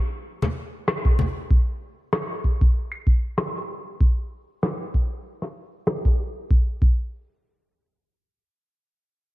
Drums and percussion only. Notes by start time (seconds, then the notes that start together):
0.42 cross-stick, high conga
0.88 cross-stick
1.05 kick
1.19 high conga
1.51 kick
2.13 cross-stick
2.44 kick
2.61 kick
2.92 claves
3.07 kick
3.38 cross-stick
4.01 kick
4.63 cross-stick
4.94 kick
5.42 cross-stick
5.87 cross-stick
6.05 kick
6.51 kick
6.82 kick